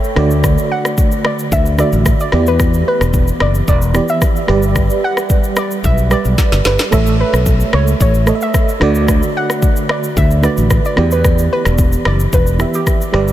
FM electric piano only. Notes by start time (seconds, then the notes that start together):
Already playing: A3 A4 C#5 E5 G5
0.16 D3 A3 F#4 D5
1.78 D3 A3 F#4 E5
2.32 E3 B3 G4 D5
3.93 E3 B3 G4 D5
4.47 G3 G4 B4 D5
6.09 G3 G4 B4 D5
6.91 A3 A4 C#5 E5
8.26 A3 A4 C#5 D#5
8.35 E5
8.80 D3 A3 F#4 D5
10.42 D3 A3 F#4 B4
10.96 E3 B3 G4 D5
12.58 E3 B3 G4 E5
13.13 G3 G4 B4 D5